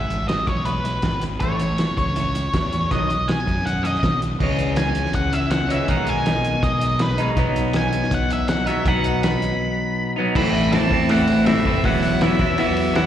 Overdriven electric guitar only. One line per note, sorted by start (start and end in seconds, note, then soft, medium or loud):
0.10 0.27 E3 medium
0.10 0.28 G#3 medium
0.29 0.46 E3 medium
0.29 0.47 G#3 medium
0.48 0.65 E3 medium
0.48 0.65 G#3 medium
0.67 0.83 E3 medium
0.67 0.84 G#3 medium
0.85 1.02 E3 medium
0.85 1.02 G#3 medium
1.04 1.21 E3 medium
1.04 1.21 G#3 medium
1.23 1.40 E3 medium
1.23 1.40 G#3 medium
1.41 1.59 A2 medium
1.41 1.60 E3 medium
1.41 1.60 A3 medium
1.61 1.78 A2 medium
1.61 1.78 E3 medium
1.79 1.96 A2 medium
1.79 1.96 E3 medium
1.98 2.15 A2 medium
1.98 2.15 E3 medium
2.17 2.34 A2 medium
2.17 2.34 E3 medium
2.36 2.52 A2 medium
2.36 2.52 E3 medium
2.55 2.71 A2 medium
2.55 2.71 E3 medium
2.74 2.90 A2 medium
2.74 2.90 E3 medium
2.91 3.09 B2 medium
2.91 3.09 D#3 medium
2.91 3.09 F#3 medium
3.10 3.27 B2 medium
3.10 3.27 D#3 medium
3.29 3.45 B2 medium
3.29 3.45 D#3 medium
3.47 3.64 B2 medium
3.47 3.64 D#3 medium
3.65 3.82 B2 medium
3.65 3.83 D#3 medium
3.84 4.01 B2 medium
3.84 4.01 D#3 medium
4.03 4.20 B2 medium
4.03 4.20 D#3 medium
4.22 4.38 B2 medium
4.22 4.38 D#3 medium
4.39 5.69 C#3 medium
4.39 5.69 E3 medium
4.39 5.69 G#3 medium
4.43 5.67 C#4 medium
5.69 5.87 C#3 medium
5.69 5.88 E3 medium
5.69 5.88 G#3 medium
5.69 5.87 C#4 medium
5.87 7.21 B2 medium
5.87 7.18 D#3 medium
5.87 7.18 G#3 medium
5.87 7.18 D#4 medium
7.18 7.36 B2 medium
7.18 7.37 D#3 medium
7.18 7.37 G#3 medium
7.18 7.39 D#4 medium
7.36 8.66 B2 medium
7.36 8.67 F#3 medium
7.36 8.67 B3 medium
7.36 8.65 D#4 medium
8.66 8.83 B2 medium
8.66 8.85 F#3 medium
8.66 8.87 B3 medium
8.66 8.84 D#4 medium
8.85 10.15 B2 medium
8.85 10.16 F#3 medium
8.85 10.16 B3 medium
8.85 10.15 D#4 loud
10.16 10.35 B2 medium
10.16 10.35 F#3 medium
10.16 10.35 B3 medium
10.16 10.34 D#4 medium
10.35 10.71 A2 medium
10.35 10.73 E3 loud
10.35 10.73 A3 loud
10.35 10.73 C4 medium
10.35 10.74 E4 medium
10.72 10.90 A2 medium
10.72 10.92 E3 loud
10.72 10.91 A3 loud
10.72 10.92 C4 loud
10.72 10.93 E4 loud
10.91 11.08 A2 medium
10.91 11.10 E3 medium
10.91 11.10 A3 medium
10.91 11.10 C4 loud
10.91 11.11 E4 medium
11.10 11.45 A2 medium
11.10 11.46 E3 loud
11.10 11.46 A3 loud
11.10 11.47 C4 loud
11.10 11.48 E4 loud
11.46 11.63 A2 medium
11.46 11.65 E3 medium
11.46 11.65 A3 medium
11.46 11.66 C4 loud
11.46 11.67 E4 medium
11.65 11.83 A2 medium
11.65 11.84 E3 medium
11.65 11.83 A3 medium
11.65 11.84 C4 medium
11.65 11.86 E4 medium
11.84 12.20 E3 medium
11.84 12.21 F#3 loud
11.84 12.22 B3 medium
11.84 12.22 E4 medium
12.21 12.39 E3 medium
12.21 12.39 F#3 medium
12.21 12.40 B3 loud
12.21 12.40 E4 loud
12.39 12.57 E3 medium
12.39 12.57 F#3 loud
12.39 12.58 B3 medium
12.39 12.59 E4 medium
12.57 12.93 E3 medium
12.57 12.93 F#3 loud
12.57 12.95 B3 loud
12.57 12.95 E4 loud
12.94 13.06 E3 medium
12.94 13.06 F#3 loud
12.94 13.06 B3 medium
12.94 13.06 E4 loud